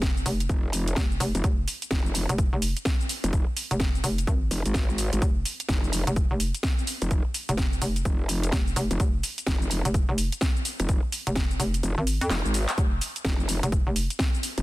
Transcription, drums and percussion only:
0.02 kick, snare, closed hi-hat, shaker
0.17 shaker
0.26 open hi-hat, shaker
0.40 closed hi-hat, shaker
0.49 kick, closed hi-hat, shaker
0.73 open hi-hat, shaker
0.88 closed hi-hat, shaker
0.96 kick, snare, closed hi-hat, shaker
1.12 shaker
1.20 open hi-hat, shaker
1.35 closed hi-hat, shaker
1.44 kick, closed hi-hat, shaker
1.68 open hi-hat, shaker
1.82 closed hi-hat, shaker
1.91 kick, snare, closed hi-hat, shaker
2.06 shaker
2.15 open hi-hat, shaker
2.29 closed hi-hat, shaker
2.38 kick, closed hi-hat, shaker
2.62 open hi-hat, shaker
2.77 closed hi-hat, shaker
2.85 kick, snare, closed hi-hat, shaker
3.01 shaker
3.09 open hi-hat, shaker
3.24 closed hi-hat, shaker
3.33 kick, closed hi-hat, shaker
3.57 open hi-hat, shaker
3.71 closed hi-hat, shaker
3.80 kick, snare, closed hi-hat, shaker
3.95 shaker
4.04 open hi-hat, shaker
4.18 closed hi-hat, shaker
4.27 kick, closed hi-hat, shaker
4.51 open hi-hat, shaker
4.66 closed hi-hat, shaker
4.74 kick, snare, closed hi-hat, shaker
4.90 shaker
4.98 open hi-hat, shaker
5.13 closed hi-hat, shaker
5.22 kick, closed hi-hat, shaker
5.45 open hi-hat, shaker
5.60 closed hi-hat, shaker
5.69 kick, snare, closed hi-hat, shaker
5.84 shaker
5.93 open hi-hat, shaker
6.07 closed hi-hat, shaker
6.16 kick, closed hi-hat, shaker
6.40 open hi-hat, shaker
6.55 closed hi-hat, shaker
6.63 kick, snare, closed hi-hat, shaker
6.79 shaker
6.87 open hi-hat, shaker
7.02 closed hi-hat, shaker
7.11 kick, closed hi-hat, shaker
7.34 open hi-hat, shaker
7.49 closed hi-hat, shaker
7.58 kick, snare, closed hi-hat, shaker
7.73 shaker
7.82 open hi-hat, shaker
7.96 closed hi-hat, shaker
8.05 kick, closed hi-hat, shaker
8.29 open hi-hat, shaker
8.43 closed hi-hat, shaker
8.52 kick, snare, closed hi-hat, shaker
8.67 shaker
8.76 open hi-hat, shaker
8.91 closed hi-hat, shaker
9.00 kick, closed hi-hat, shaker
9.23 open hi-hat, shaker
9.38 closed hi-hat, shaker
9.47 kick, snare, closed hi-hat, shaker
9.62 shaker
9.71 open hi-hat, shaker
9.85 closed hi-hat, shaker
9.94 kick, closed hi-hat, shaker
10.18 open hi-hat, shaker
10.32 closed hi-hat, shaker
10.41 kick, snare, closed hi-hat, shaker
10.56 shaker
10.65 open hi-hat, shaker
10.80 closed hi-hat, shaker
10.89 kick, closed hi-hat, shaker
11.12 open hi-hat, shaker
11.27 closed hi-hat, shaker
11.36 kick, snare, closed hi-hat, shaker
11.51 shaker
11.60 open hi-hat, shaker
11.74 closed hi-hat, shaker
11.83 closed hi-hat, shaker
12.07 open hi-hat, shaker
12.21 closed hi-hat, shaker
12.30 snare, clap, closed hi-hat, shaker
12.45 shaker
12.54 open hi-hat, shaker
12.69 clap, closed hi-hat, shaker
12.78 kick, closed hi-hat, shaker
13.01 open hi-hat, shaker
13.16 closed hi-hat, shaker
13.25 kick, snare, closed hi-hat, shaker
13.40 shaker
13.49 open hi-hat, shaker
13.63 closed hi-hat, shaker
13.72 kick, closed hi-hat, shaker
13.96 open hi-hat, shaker
14.10 closed hi-hat, shaker
14.19 kick, snare, closed hi-hat, shaker
14.34 shaker
14.43 open hi-hat, shaker
14.58 closed hi-hat, shaker

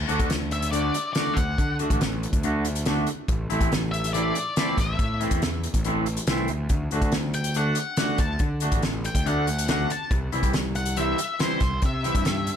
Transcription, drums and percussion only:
0.09 closed hi-hat
0.19 kick, closed hi-hat
0.30 snare, closed hi-hat
0.51 closed hi-hat
0.62 closed hi-hat
0.73 closed hi-hat
0.94 closed hi-hat
1.15 snare, closed hi-hat
1.37 kick, closed hi-hat
1.58 kick, closed hi-hat
1.79 closed hi-hat
1.90 kick, closed hi-hat
2.01 snare, closed hi-hat
2.23 closed hi-hat
2.33 kick, closed hi-hat
2.43 closed hi-hat
2.65 closed hi-hat
2.75 closed hi-hat
2.85 snare, closed hi-hat
3.07 closed hi-hat
3.28 kick, closed hi-hat
3.50 closed hi-hat
3.61 kick, closed hi-hat
3.72 snare, closed hi-hat
3.93 closed hi-hat
4.04 closed hi-hat
4.14 closed hi-hat
4.35 closed hi-hat
4.56 snare, closed hi-hat
4.78 kick, snare, closed hi-hat
4.99 kick, closed hi-hat
5.21 closed hi-hat
5.31 kick, closed hi-hat
5.42 snare, closed hi-hat
5.63 closed hi-hat
5.74 kick, closed hi-hat
5.84 closed hi-hat
6.06 closed hi-hat
6.17 closed hi-hat
6.27 snare, closed hi-hat
6.48 closed hi-hat
6.69 kick, closed hi-hat
6.91 closed hi-hat
7.02 kick, closed hi-hat
7.12 snare, closed hi-hat
7.34 closed hi-hat
7.44 closed hi-hat
7.54 closed hi-hat
7.75 closed hi-hat
7.97 snare, closed hi-hat
8.18 kick, closed hi-hat
8.39 kick, closed hi-hat
8.60 closed hi-hat
8.72 kick, closed hi-hat
8.82 snare, closed hi-hat
9.04 closed hi-hat
9.15 kick, closed hi-hat
9.26 closed hi-hat
9.47 closed hi-hat
9.58 closed hi-hat
9.68 snare, closed hi-hat
9.90 closed hi-hat
10.11 kick, closed hi-hat
10.32 closed hi-hat
10.43 kick, closed hi-hat
10.53 snare, closed hi-hat
10.75 closed hi-hat
10.86 closed hi-hat
10.96 closed hi-hat
11.18 closed hi-hat
11.39 snare, closed hi-hat
11.60 kick, snare, closed hi-hat
11.82 kick, closed hi-hat
12.04 closed hi-hat
12.15 kick, closed hi-hat
12.25 snare, closed hi-hat
12.47 closed hi-hat

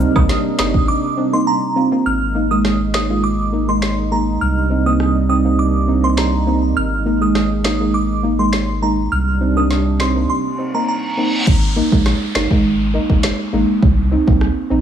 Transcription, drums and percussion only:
0.00 cabasa
0.16 kick, high woodblock
0.29 snare, closed hi-hat
0.59 finger snap, snare, cabasa, high woodblock
0.74 kick
2.65 cross-stick, snare
2.94 finger snap, snare
3.82 finger snap, snare
5.00 cross-stick
6.17 finger snap, snare
7.35 cross-stick, snare
7.64 finger snap, snare
8.53 finger snap, snare
9.71 snare
10.00 finger snap, snare
11.47 kick, crash
11.92 kick
12.06 cross-stick, snare
12.35 finger snap, snare
12.51 kick
13.10 kick
13.23 finger snap, snare
13.82 kick
14.28 kick
14.41 cross-stick

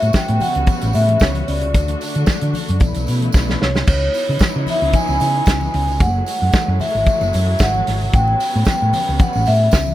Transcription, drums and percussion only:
0.02 closed hi-hat, tambourine
0.13 kick, snare, tambourine, muted conga, high conga
0.28 closed hi-hat, muted conga
0.40 open hi-hat, tambourine, high conga, low conga
0.55 closed hi-hat
0.66 kick, closed hi-hat, tambourine, muted conga, high conga
0.81 closed hi-hat, tambourine, muted conga
0.93 open hi-hat, tambourine
1.08 closed hi-hat, high conga
1.20 kick, snare, tambourine
1.35 closed hi-hat, muted conga, high conga
1.48 open hi-hat
1.61 closed hi-hat, low conga
1.74 kick, closed hi-hat, tambourine, muted conga
1.88 closed hi-hat, muted conga
2.01 open hi-hat, tambourine
2.15 closed hi-hat, tambourine
2.26 kick, snare, tambourine, muted conga, high conga
2.41 closed hi-hat
2.54 open hi-hat, tambourine, high conga, low conga
2.68 closed hi-hat
2.80 kick, closed hi-hat, tambourine, muted conga, high conga
2.94 closed hi-hat, tambourine
3.07 open hi-hat, tambourine
3.21 closed hi-hat, high conga
3.32 kick, snare, tambourine
3.48 snare, tambourine, muted conga, high conga
3.62 snare
3.75 snare, tambourine, low conga
3.87 kick, crash, tambourine, muted conga
4.14 open hi-hat, tambourine
4.39 kick, snare, closed hi-hat, tambourine, muted conga, high conga
4.55 muted conga
4.67 open hi-hat, tambourine, high conga, low conga
4.93 kick, closed hi-hat, tambourine, muted conga, high conga, low conga
5.07 tambourine
5.20 open hi-hat, tambourine
5.46 kick, snare, closed hi-hat, tambourine, muted conga
5.61 tambourine, high conga
5.74 open hi-hat
5.88 tambourine, low conga
6.00 kick, closed hi-hat, tambourine
6.26 open hi-hat, tambourine
6.53 kick, snare, closed hi-hat, tambourine, muted conga, high conga
6.80 open hi-hat, tambourine, high conga, low conga
6.94 tambourine
7.06 kick, closed hi-hat, tambourine, muted conga, high conga, low conga
7.21 tambourine, muted conga
7.33 open hi-hat, tambourine
7.59 kick, snare, closed hi-hat, tambourine, muted conga
7.74 muted conga, high conga
7.87 snare, open hi-hat
8.02 tambourine, low conga
8.13 kick, closed hi-hat, tambourine, muted conga
8.28 muted conga
8.40 open hi-hat, tambourine
8.54 tambourine
8.65 kick, snare, closed hi-hat, tambourine, muted conga, high conga
8.82 muted conga
8.93 open hi-hat, tambourine, high conga, low conga
9.07 tambourine
9.19 kick, closed hi-hat, tambourine, muted conga, high conga, low conga
9.33 tambourine
9.46 open hi-hat, tambourine
9.71 kick, snare, closed hi-hat, tambourine
9.87 muted conga, high conga

